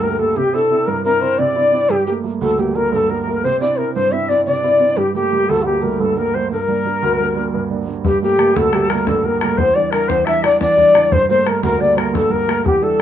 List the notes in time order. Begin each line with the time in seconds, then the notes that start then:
Already playing: D2 G2
0.02 A3 A#3 G4 A#4
0.19 A3 A#3 G4 A4
0.37 C3 G4
0.53 C4 D4 E4 A4
0.71 C4 D4 E4
0.87 G2 A#4
1.04 C4 D4 E4 A#4
1.21 C4 D4 E4 C5
1.38 C3 D5
1.56 C4 D4 E4
1.72 C4 D4 E4
1.90 G2 G4 A4
1.95 G4
2.07 G3 A3 A#3 G4
2.24 G3 A3 A#3
2.41 D2 A4
2.58 G3 A3 A#3 G4
2.75 G3 A3 A#3 A#4
2.92 G2 A4
3.10 G3 A#3 A#4
3.22 A#4
3.27 G3 A3 A#3
3.33 A#4
3.44 C3 C5
3.60 C4 D4 E4 D5
3.77 C4 D4 E4 A#4
3.94 G2 C5
4.12 C4 D4 E4 E5
4.29 C4 D4 E4 D5
4.45 C3 D5
4.63 C4 D4 E4
4.80 C4 D4 E4
4.97 G2 G4
5.14 G3 A3 A#3 G4
5.32 G3 A3 A#3
5.49 D2 A4
5.62 G3 F4 G4
5.66 A3 A#3
5.82 G3 A3 A#3 A#4
6.00 G2 A4
6.17 G3 A3 A#3 A#4
6.34 G3 A3 A#3 C5
6.51 G2 A#4
6.68 G3 A#3 D4
6.85 G3 A#3 D4
7.03 D2
7.19 G3 A#3 D4
7.36 G3 A#3 D4
7.54 G2
7.70 G3 A#3 D4
7.87 G3 A#3 D4
8.05 G2 G4, bodhran
8.22 G3 A3 A#3 G4
8.39 G3 A3 A#3, bodhran
8.56 D2 A4, bodhran
8.64 bodhran
8.73 G3 A3 A#3 G4, bodhran
8.89 G3 A3 A#3 A#4, bodhran
9.07 G2 A4, bodhran
9.24 G3 A#3 A#4, bodhran
9.40 G3 A3 A#3 A#4, bodhran
9.57 E2 C5, bodhran
9.74 E3 G3 D4 D5
9.91 E3 G3 D4 A#4, bodhran
10.08 E2 C5, bodhran
10.19 bodhran
10.25 E3 G3 D4 E5, bodhran
10.43 E3 G3 D4 D5, bodhran
10.60 E2 D5, bodhran
10.77 E3 G3 D4, bodhran
10.94 E3 G3 D4, bodhran
11.12 G2 C5, bodhran
11.29 G3 A3 A#3 C5
11.45 G3 A3 A#3 A#4, bodhran
11.63 D2 A#4, bodhran
11.73 bodhran
11.79 G3 A3 A#3 D5
11.96 G3 A3 A#3 A#4, bodhran
12.13 G2 A4, bodhran
12.30 G3 A#3 A#4, bodhran
12.47 G3 A3 A#3, bodhran
12.65 E2 G4, bodhran
12.82 E3 G3 D4 A4
12.98 E3 G3